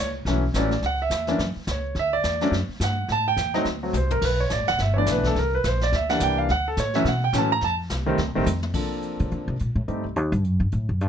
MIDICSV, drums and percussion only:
0, 0, Header, 1, 2, 480
1, 0, Start_track
1, 0, Key_signature, 2, "major"
1, 0, Tempo, 282885
1, 1400, Time_signature, 4, 2, 24, 8
1, 18812, End_track
2, 0, Start_track
2, 0, Title_t, "Drums"
2, 438, Note_on_c, 9, 25, 48
2, 438, Note_on_c, 9, 38, 49
2, 608, Note_off_c, 9, 38, 0
2, 919, Note_on_c, 9, 38, 65
2, 919, Note_on_c, 9, 44, 48
2, 1088, Note_off_c, 9, 38, 0
2, 1088, Note_off_c, 9, 44, 0
2, 1205, Note_on_c, 9, 38, 36
2, 1375, Note_off_c, 9, 38, 0
2, 1397, Note_off_c, 9, 25, 0
2, 1397, Note_on_c, 9, 25, 44
2, 1397, Note_on_c, 9, 38, 44
2, 1567, Note_off_c, 9, 38, 0
2, 1878, Note_on_c, 9, 38, 63
2, 1878, Note_on_c, 9, 44, 63
2, 2047, Note_off_c, 9, 38, 0
2, 2047, Note_off_c, 9, 44, 0
2, 2155, Note_on_c, 9, 38, 39
2, 2325, Note_off_c, 9, 38, 0
2, 2358, Note_off_c, 9, 25, 0
2, 2358, Note_on_c, 9, 25, 51
2, 2358, Note_on_c, 9, 38, 46
2, 2528, Note_off_c, 9, 38, 0
2, 2837, Note_on_c, 9, 38, 65
2, 2837, Note_on_c, 9, 44, 55
2, 3007, Note_off_c, 9, 38, 0
2, 3007, Note_off_c, 9, 44, 0
2, 3317, Note_off_c, 9, 25, 0
2, 3317, Note_on_c, 9, 25, 44
2, 3317, Note_on_c, 9, 38, 44
2, 3487, Note_off_c, 9, 38, 0
2, 3793, Note_on_c, 9, 38, 55
2, 3793, Note_on_c, 9, 44, 55
2, 3963, Note_off_c, 9, 38, 0
2, 3963, Note_off_c, 9, 44, 0
2, 4086, Note_on_c, 9, 38, 37
2, 4256, Note_off_c, 9, 38, 0
2, 4288, Note_off_c, 9, 25, 0
2, 4288, Note_on_c, 9, 25, 53
2, 4288, Note_on_c, 9, 38, 42
2, 4458, Note_off_c, 9, 38, 0
2, 4763, Note_on_c, 9, 38, 71
2, 4763, Note_on_c, 9, 44, 61
2, 4932, Note_off_c, 9, 38, 0
2, 4932, Note_off_c, 9, 44, 0
2, 5238, Note_off_c, 9, 25, 0
2, 5238, Note_on_c, 9, 25, 49
2, 5238, Note_on_c, 9, 38, 43
2, 5408, Note_off_c, 9, 38, 0
2, 5721, Note_on_c, 9, 38, 65
2, 5721, Note_on_c, 9, 44, 52
2, 5891, Note_off_c, 9, 38, 0
2, 5891, Note_off_c, 9, 44, 0
2, 6005, Note_on_c, 9, 38, 36
2, 6175, Note_off_c, 9, 38, 0
2, 6196, Note_off_c, 9, 25, 0
2, 6196, Note_on_c, 9, 25, 49
2, 6196, Note_on_c, 9, 38, 47
2, 6366, Note_off_c, 9, 38, 0
2, 6683, Note_on_c, 9, 43, 57
2, 6683, Note_on_c, 9, 44, 65
2, 6853, Note_off_c, 9, 43, 0
2, 6853, Note_off_c, 9, 44, 0
2, 6966, Note_on_c, 9, 43, 67
2, 7136, Note_off_c, 9, 43, 0
2, 7157, Note_on_c, 9, 36, 66
2, 7160, Note_off_c, 9, 25, 0
2, 7160, Note_on_c, 9, 25, 53
2, 7160, Note_on_c, 9, 38, 44
2, 7160, Note_on_c, 9, 49, 76
2, 7327, Note_off_c, 9, 36, 0
2, 7330, Note_off_c, 9, 38, 0
2, 7330, Note_off_c, 9, 49, 0
2, 7633, Note_on_c, 9, 38, 60
2, 7633, Note_on_c, 9, 44, 56
2, 7803, Note_off_c, 9, 38, 0
2, 7803, Note_off_c, 9, 44, 0
2, 7927, Note_on_c, 9, 38, 36
2, 8097, Note_off_c, 9, 38, 0
2, 8117, Note_off_c, 9, 25, 0
2, 8117, Note_on_c, 9, 25, 45
2, 8117, Note_on_c, 9, 38, 49
2, 8286, Note_off_c, 9, 38, 0
2, 8592, Note_on_c, 9, 38, 70
2, 8592, Note_on_c, 9, 44, 70
2, 8761, Note_off_c, 9, 38, 0
2, 8761, Note_off_c, 9, 44, 0
2, 8886, Note_on_c, 9, 36, 49
2, 8892, Note_on_c, 9, 38, 43
2, 9055, Note_off_c, 9, 36, 0
2, 9061, Note_off_c, 9, 38, 0
2, 9093, Note_off_c, 9, 25, 0
2, 9093, Note_on_c, 9, 25, 49
2, 9093, Note_on_c, 9, 38, 41
2, 9263, Note_off_c, 9, 38, 0
2, 9568, Note_on_c, 9, 38, 60
2, 9568, Note_on_c, 9, 44, 52
2, 9737, Note_off_c, 9, 38, 0
2, 9737, Note_off_c, 9, 44, 0
2, 9860, Note_on_c, 9, 38, 41
2, 10030, Note_off_c, 9, 38, 0
2, 10056, Note_off_c, 9, 25, 0
2, 10056, Note_on_c, 9, 25, 52
2, 10056, Note_on_c, 9, 38, 47
2, 10226, Note_off_c, 9, 38, 0
2, 10338, Note_on_c, 9, 38, 66
2, 10508, Note_off_c, 9, 38, 0
2, 10518, Note_on_c, 9, 38, 72
2, 10518, Note_on_c, 9, 44, 65
2, 10688, Note_off_c, 9, 38, 0
2, 10688, Note_off_c, 9, 44, 0
2, 11005, Note_off_c, 9, 25, 0
2, 11005, Note_on_c, 9, 25, 40
2, 11005, Note_on_c, 9, 38, 46
2, 11175, Note_off_c, 9, 38, 0
2, 11487, Note_on_c, 9, 38, 64
2, 11487, Note_on_c, 9, 44, 59
2, 11657, Note_off_c, 9, 38, 0
2, 11657, Note_off_c, 9, 44, 0
2, 11767, Note_on_c, 9, 38, 37
2, 11937, Note_off_c, 9, 38, 0
2, 11969, Note_off_c, 9, 25, 0
2, 11969, Note_on_c, 9, 25, 50
2, 11969, Note_on_c, 9, 38, 47
2, 12138, Note_off_c, 9, 38, 0
2, 12440, Note_on_c, 9, 38, 74
2, 12440, Note_on_c, 9, 44, 61
2, 12609, Note_off_c, 9, 38, 0
2, 12609, Note_off_c, 9, 44, 0
2, 12912, Note_off_c, 9, 25, 0
2, 12912, Note_on_c, 9, 25, 50
2, 12912, Note_on_c, 9, 38, 46
2, 13082, Note_off_c, 9, 38, 0
2, 13402, Note_on_c, 9, 38, 67
2, 13402, Note_on_c, 9, 44, 52
2, 13571, Note_off_c, 9, 38, 0
2, 13571, Note_off_c, 9, 44, 0
2, 13877, Note_off_c, 9, 25, 0
2, 13877, Note_on_c, 9, 25, 49
2, 13877, Note_on_c, 9, 38, 50
2, 14047, Note_off_c, 9, 38, 0
2, 14360, Note_on_c, 9, 44, 63
2, 14529, Note_off_c, 9, 44, 0
2, 14639, Note_on_c, 9, 47, 63
2, 14809, Note_off_c, 9, 47, 0
2, 14825, Note_on_c, 9, 49, 64
2, 14829, Note_on_c, 9, 36, 68
2, 14994, Note_off_c, 9, 49, 0
2, 14999, Note_off_c, 9, 36, 0
2, 15202, Note_off_c, 9, 25, 0
2, 15313, Note_on_c, 9, 42, 43
2, 15482, Note_off_c, 9, 42, 0
2, 15598, Note_on_c, 9, 42, 38
2, 15767, Note_off_c, 9, 42, 0
2, 15797, Note_on_c, 9, 42, 35
2, 15967, Note_off_c, 9, 42, 0
2, 16276, Note_on_c, 9, 42, 52
2, 16446, Note_off_c, 9, 42, 0
2, 16764, Note_on_c, 9, 42, 37
2, 16933, Note_off_c, 9, 42, 0
2, 17235, Note_on_c, 9, 42, 43
2, 17404, Note_off_c, 9, 42, 0
2, 17525, Note_on_c, 9, 42, 40
2, 17695, Note_off_c, 9, 42, 0
2, 17719, Note_on_c, 9, 42, 40
2, 17889, Note_off_c, 9, 42, 0
2, 18185, Note_on_c, 9, 42, 46
2, 18354, Note_off_c, 9, 42, 0
2, 18677, Note_on_c, 9, 42, 37
2, 18812, Note_off_c, 9, 42, 0
2, 18812, End_track
0, 0, End_of_file